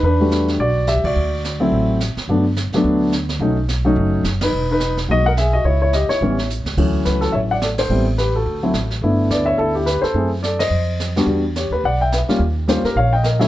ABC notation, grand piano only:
X:1
M:4/4
L:1/8
Q:"Swing" 1/4=214
K:Edor
V:1 name="Grand piano"
[DB]3 z [Fd]2 [Ge] [Fd]- | [Fd]4- [Fd] z3 | z8 | z6 z [^DB]- |
[^DB] [DB]2 z [F^d] [^Af] [^Ge] [Fd] | [Ec] [Ec] [G^d] [Ec]3 z2 | [K:D] z2 [FB] [FA] [ce] [df] [Ad] [A=c]- | [A=c] z [GB] [FA]4 z |
z2 [Bd] [ce] [EA] [EG] [GB] [A=c]- | [A=c] z [Ad] [c_e]4 z | z2 [Gc] [GB] [df] [eg] [Be] z | z2 [G=c] [G_B] [_d=f] [_eg] [Be] z |]
V:2 name="Grand piano"
z [G,A,DF]3 z4 | z3 [F,A,=CE]3 z2 | [F,A,B,D] z2 [F,A,B,D]3 z2 | [F,A,C^D] z2 [F,A,CD]3 z2 |
z4 [F,^G,^A,^D] z3 | z4 [E,G,B,C] z3 | [K:D] [E,F,A,C]4- [E,F,A,C] z3 | [G,B,=CE] z4 [F,A,CE] z2 |
[A,B,DE]4- [A,B,DE] z3 | [A,=CE^G] z6 [=G,B,DF] | [G,B,DF] z6 [G,_B,C=F] | z2 [G,_B,_D=F] z4 [^F,A,DE] |]